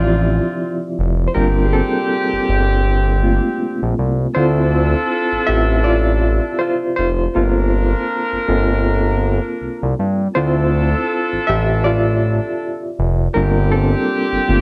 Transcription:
0.00 0.40 A1 medium
0.00 1.36 F3 medium
0.00 0.93 C4 medium
0.00 1.35 C4 medium
0.00 0.93 D4 medium
0.00 1.36 E4 medium
0.00 0.93 F4 medium
0.00 1.36 F4 medium
0.00 1.36 G4 medium
0.00 1.28 C5 medium
0.00 1.33 D5 loud
0.00 1.35 E5 loud
0.99 1.28 F1 medium
1.28 1.34 C5 medium
1.34 1.82 G1 loud
1.34 2.43 G3 medium
1.34 2.43 A#3 soft
1.34 3.93 C4 medium
1.34 1.73 C4 medium
1.34 3.93 D4 medium
1.34 1.64 D4 medium
1.34 2.43 F4 medium
1.34 3.93 G4 medium
1.34 1.67 A#4 medium
1.65 1.72 G#4 medium
1.73 3.22 C4 medium
1.73 3.93 A4 medium
2.33 2.39 G1 soft
2.49 3.40 G1 medium
3.23 3.56 A3 soft
3.23 3.56 A#3 soft
3.23 3.56 C4 soft
3.23 3.56 F4 medium
3.82 3.94 A#1 medium
3.99 4.27 C2 medium
4.34 4.95 D2 loud
4.34 5.46 C4 medium
4.34 6.93 D4 medium
4.34 5.47 E4 medium
4.34 6.92 F4 medium
4.34 5.44 F4 medium
4.34 6.93 A4 medium
4.34 5.43 C5 medium
5.32 5.38 A1 soft
5.47 6.40 A1 medium
5.47 5.81 C4 medium
5.47 5.81 E4 soft
5.47 5.81 F4 medium
5.47 5.65 G4 medium
5.47 5.63 E5 loud
5.84 6.56 F4 medium
5.84 6.55 D5 loud
6.59 6.95 F4 medium
6.59 6.95 C5 medium
6.96 7.28 F1 medium
6.96 7.35 F4 medium
6.96 8.05 C5 medium
7.34 7.95 G1 loud
7.34 8.43 A#3 medium
7.34 8.43 C4 medium
7.34 9.93 D4 medium
7.34 9.93 F4 medium
7.34 8.43 F4 medium
7.34 8.43 A4 medium
7.34 9.93 A#4 medium
8.32 8.38 G1 soft
8.48 9.40 G1 medium
8.48 8.81 A#3 soft
8.48 8.81 C4 soft
8.48 8.81 F4 medium
8.48 8.81 A4 soft
9.61 9.69 C2 soft
9.83 9.95 C2 medium
9.99 10.28 G2 medium
10.34 10.95 D2 loud
10.34 10.86 C4 medium
10.34 12.93 D4 medium
10.34 10.87 E4 soft
10.34 12.92 F4 medium
10.34 11.44 F4 medium
10.34 12.93 A4 medium
10.34 11.43 C5 loud
11.33 11.39 A1 soft
11.47 12.40 A1 medium
11.47 11.83 G4 medium
11.47 11.85 E5 loud
11.84 13.31 F4 medium
11.84 13.39 D5 loud
12.99 13.28 F1 medium
13.34 13.95 G1 loud
13.34 14.61 G3 medium
13.34 14.47 A#3 medium
13.34 14.61 C4 medium
13.34 13.73 C4 soft
13.34 14.61 D4 medium
13.34 13.70 D4 medium
13.34 14.47 F4 medium
13.34 14.61 G4 medium
13.34 13.73 A#4 medium
13.72 14.47 C4 medium
13.72 14.61 A4 medium
14.32 14.38 G1 soft
14.47 14.61 G1 medium
14.47 14.61 A3 medium
14.47 14.61 A#3 soft
14.47 14.61 C4 soft
14.47 14.61 F4 medium

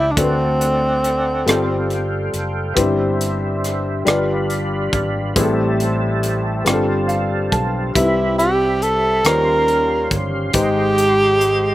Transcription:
0.00 0.14 C#2 medium
0.00 0.12 G3 soft
0.00 0.12 C4 soft
0.00 0.13 E4 medium
0.00 0.13 E4 soft
0.00 0.13 B4 soft
0.00 0.12 D5 medium
0.00 0.14 E5 soft
0.00 0.13 G5 soft
0.11 0.20 D4 soft
0.16 1.43 D2 medium
0.16 1.43 D3 soft
0.16 1.47 A3 soft
0.16 2.34 C4 medium
0.16 1.47 D4 soft
0.16 1.47 F#4 soft
0.16 2.74 A4 medium
0.16 0.24 B4 soft
0.16 1.45 D5 soft
0.16 1.45 F#5 medium
0.16 kick medium
0.16 closed hi-hat medium
0.25 1.51 C5 medium
0.61 closed hi-hat soft
1.04 closed hi-hat soft
1.46 2.29 G1 medium
1.46 2.74 G3 medium
1.46 2.74 C4 medium
1.46 2.77 F4 medium
1.46 2.77 A4 medium
1.46 2.76 F5 medium
1.46 2.75 G5 soft
1.46 cross-stick medium
1.46 closed hi-hat medium
1.90 closed hi-hat soft
2.34 2.73 F#1 medium
2.34 closed hi-hat soft
2.74 4.02 G1 medium
2.74 4.02 G2 medium
2.74 4.04 G3 medium
2.74 4.06 C4 medium
2.74 4.06 E4 medium
2.74 5.33 G4 medium
2.74 4.04 C5 soft
2.74 4.07 C5 medium
2.74 4.04 E5 soft
2.74 kick medium
2.74 closed hi-hat medium
3.21 closed hi-hat soft
3.64 cross-stick soft
3.64 closed hi-hat soft
4.05 4.89 G1 medium
4.05 5.32 G2 medium
4.05 5.34 G3 medium
4.05 5.36 D4 medium
4.05 5.36 F4 medium
4.05 5.36 B4 medium
4.05 5.34 D5 soft
4.05 5.34 F5 soft
4.05 5.35 B5 medium
4.05 cross-stick medium
4.05 closed hi-hat medium
4.50 closed hi-hat soft
4.93 5.33 G#1 medium
4.93 kick medium
4.93 closed hi-hat soft
5.36 6.62 A1 medium
5.36 6.62 A2 medium
5.36 6.63 G3 medium
5.36 6.64 C4 medium
5.36 6.66 E4 medium
5.36 10.50 G4 soft
5.36 5.43 G#4 medium
5.36 7.93 C5 soft
5.36 6.64 E5 soft
5.36 7.93 A5 medium
5.36 kick medium
5.36 closed hi-hat medium
5.43 6.69 A4 medium
5.80 closed hi-hat soft
6.23 closed hi-hat soft
6.65 7.48 G1 medium
6.65 7.91 G2 medium
6.65 7.94 G3 medium
6.65 7.95 C4 medium
6.65 7.95 F4 medium
6.65 6.72 G4 medium
6.65 7.95 F5 soft
6.65 cross-stick medium
6.65 closed hi-hat medium
6.73 7.99 A4 medium
7.08 7.49 F5 medium
7.08 closed hi-hat soft
7.52 7.92 B1 medium
7.52 7.92 A5 medium
7.52 kick medium
7.52 closed hi-hat soft
7.95 9.21 C2 medium
7.95 9.21 C3 medium
7.95 9.23 G3 soft
7.95 9.24 C4 soft
7.95 9.25 C4 soft
7.95 8.02 D#4 soft
7.95 8.36 E4 medium
7.95 9.26 B4 medium
7.95 9.24 E5 soft
7.95 9.23 B5 medium
7.95 kick medium
7.95 closed hi-hat medium
8.03 9.29 E4 soft
8.39 8.84 G4 medium
8.39 closed hi-hat soft
8.82 9.27 A4 medium
8.82 closed hi-hat soft
9.24 10.07 D#2 medium
9.24 10.51 D#3 soft
9.24 10.55 G3 medium
9.24 10.53 C#4 soft
9.24 10.55 C#4 soft
9.24 10.55 F4 soft
9.24 10.12 A#4 medium
9.24 10.53 C5 medium
9.24 10.53 F5 soft
9.24 10.53 C6 medium
9.24 cross-stick medium
9.24 closed hi-hat medium
9.68 closed hi-hat soft
10.11 10.51 G1 medium
10.11 kick medium
10.11 closed hi-hat soft
10.53 11.75 G#1 medium
10.53 11.75 G#2 medium
10.53 11.75 G#3 medium
10.53 11.75 D#4 soft
10.53 11.75 G4 medium
10.53 11.75 G4 soft
10.53 11.75 C5 medium
10.53 11.75 D#5 soft
10.53 11.75 G5 soft
10.53 11.75 C6 medium
10.53 kick medium
10.53 closed hi-hat medium
10.98 closed hi-hat soft
11.41 closed hi-hat soft

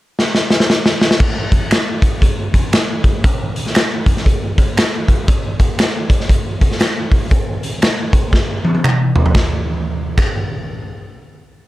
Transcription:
0.19 snare soft
0.35 snare medium
0.50 snare medium
0.60 snare medium
0.70 snare medium
0.86 snare medium
1.01 snare medium
1.11 snare medium
1.20 kick loud
1.20 crash medium
1.52 kick medium
1.52 closed hi-hat medium
1.71 finger snap loud
1.71 snare medium
1.71 closed hi-hat medium
2.02 kick medium
2.02 closed hi-hat medium
2.22 kick medium
2.22 closed hi-hat medium
2.54 kick medium
2.54 closed hi-hat medium
2.72 finger snap medium
2.72 snare medium
2.72 closed hi-hat medium
3.04 kick medium
3.04 closed hi-hat medium
3.24 kick loud
3.24 closed hi-hat medium
3.56 closed hi-hat medium
3.67 snare soft
3.75 finger snap loud
3.75 snare loud
3.75 closed hi-hat medium
4.06 kick medium
4.06 closed hi-hat medium
4.17 snare soft
4.26 kick medium
4.26 closed hi-hat medium
4.58 kick medium
4.58 closed hi-hat medium
4.77 finger snap loud
4.77 snare loud
4.77 closed hi-hat medium
5.08 kick medium
5.08 closed hi-hat medium
5.28 kick loud
5.28 closed hi-hat medium
5.60 kick medium
5.60 closed hi-hat medium
5.79 finger snap loud
5.79 snare medium
5.79 closed hi-hat medium
6.10 kick medium
6.10 closed hi-hat medium
6.20 snare soft
6.29 kick medium
6.29 closed hi-hat medium
6.61 kick medium
6.61 closed hi-hat medium
6.71 snare soft
6.80 finger snap loud
6.80 snare loud
6.80 closed hi-hat medium
7.12 kick medium
7.12 open hi-hat soft
7.31 kick loud
7.31 closed hi-hat medium
7.63 closed hi-hat medium
7.82 finger snap loud
7.82 snare medium
7.82 closed hi-hat medium
8.13 kick medium
8.13 closed hi-hat medium
8.33 kick medium
8.33 snare soft
8.65 high tom medium
8.75 high tom medium
8.84 finger snap medium
8.84 mid tom medium
9.16 floor tom medium
9.26 floor tom medium
9.35 finger snap medium
9.35 kick loud
9.35 snare medium
10.18 finger snap medium
10.18 kick loud
10.18 crash medium

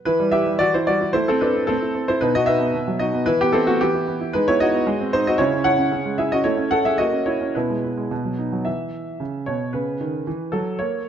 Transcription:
0.05 0.58 E3 medium
0.05 0.31 E4 medium
0.05 0.33 B4 loud
0.20 0.41 G3 medium
0.31 0.55 E4 medium
0.31 0.58 G4 medium
0.31 0.59 E5 loud
0.46 0.68 G3 soft
0.59 1.13 E3 medium
0.59 0.73 F#4 medium
0.59 0.73 D5 loud
0.74 0.87 E4 medium
0.74 0.88 C5 medium
0.87 1.09 G3 medium
0.87 1.13 F#4 medium
0.87 1.14 D5 medium
1.01 1.13 E4 medium
1.13 1.67 A3 medium
1.13 1.27 E4 medium
1.13 1.27 C5 medium
1.28 1.41 C4 medium
1.28 1.42 A4 medium
1.41 1.67 D4 medium
1.41 1.63 E4 medium
1.41 1.68 B4 medium
1.55 1.67 C4 soft
1.67 2.20 A3 medium
1.67 1.93 C4 medium
1.67 2.07 A4 medium
1.82 2.03 E4 soft
1.95 2.16 C4 medium
2.08 2.21 E4 medium
2.08 2.21 C5 medium
2.21 2.73 B2 medium
2.21 2.34 D#4 medium
2.21 2.34 B4 medium
2.35 2.56 B3 medium
2.35 2.48 F#4 medium
2.35 2.48 D#5 loud
2.46 2.69 D#4 medium
2.46 2.97 B4 medium
2.46 3.00 E5 loud
2.61 2.82 B3 medium
2.74 3.25 B2 medium
2.88 3.09 F#3 soft
2.99 3.22 D#4 medium
2.99 3.25 F#4 medium
2.99 3.26 D#5 medium
3.14 3.27 B3 medium
3.26 3.80 E3 medium
3.26 3.39 E4 medium
3.26 3.40 B4 loud
3.41 3.53 B3 medium
3.41 3.54 G4 loud
3.53 3.66 C4 medium
3.53 3.75 E4 medium
3.53 3.66 A4 medium
3.67 3.80 A3 medium
3.67 3.80 B3 soft
3.67 3.80 F#4 medium
3.81 4.33 E3 medium
3.81 4.06 B3 medium
3.81 4.34 G4 medium
3.94 4.15 E4 soft
4.08 4.29 B3 medium
4.21 4.34 E4 medium
4.33 4.85 G#3 medium
4.33 4.47 D#4 medium
4.33 4.47 B4 loud
4.48 4.68 B3 medium
4.48 4.60 E4 medium
4.48 4.60 C#5 loud
4.60 4.82 D#4 medium
4.60 5.10 F#4 medium
4.60 5.12 D#5 loud
4.74 4.87 B3 soft
4.87 5.37 G#3 medium
5.00 5.21 C4 medium
5.13 5.25 D#4 medium
5.13 5.26 C5 loud
5.27 5.39 C4 medium
5.27 5.39 F#4 medium
5.27 5.39 D#5 medium
5.38 5.90 C#3 medium
5.38 5.63 E4 medium
5.38 5.64 C#5 loud
5.53 5.73 C#4 medium
5.64 5.86 E4 medium
5.64 6.15 C#5 medium
5.64 6.18 F#5 loud
5.78 6.00 C#4 medium
5.92 6.43 C#3 medium
6.06 6.26 G#3 soft
6.18 6.40 E4 medium
6.18 6.31 G#4 medium
6.18 6.31 E5 medium
6.32 6.45 C#4 medium
6.32 6.45 F#4 medium
6.32 6.45 D#5 medium
6.44 6.98 A3 medium
6.44 6.70 E4 medium
6.44 6.71 C#5 medium
6.57 6.79 C#4 medium
6.71 6.94 E4 medium
6.71 6.84 A4 medium
6.71 6.85 F#5 medium
6.85 6.99 C#4 soft
6.85 6.99 G#4 medium
6.85 6.99 E5 medium
6.98 7.53 A#3 medium
6.98 7.25 F#4 medium
6.98 7.26 D#5 medium
7.13 7.35 C#4 soft
7.26 7.53 E4 medium
7.26 7.55 C#5 medium
7.41 7.55 C#4 soft
7.55 8.10 B2 medium
7.55 7.83 E4 medium
7.55 8.39 B4 medium
7.70 7.92 G#3 soft
7.84 8.06 E4 soft
7.98 8.11 G#3 soft
8.11 8.65 B2 medium
8.25 8.47 F#3 soft
8.39 8.61 D#4 soft
8.53 8.66 F#3 soft
8.65 9.05 E3 soft
8.65 9.46 E5 medium
9.20 9.45 C#3 soft
9.46 9.73 B2 soft
9.46 9.73 C#5 medium
9.73 9.99 C#3 soft
9.73 10.52 B4 medium
10.01 10.25 D#3 medium
10.27 10.52 E3 medium
10.52 10.78 F#3 medium
10.52 10.79 A4 medium
10.79 11.09 A#3 medium
10.79 11.09 C#5 medium

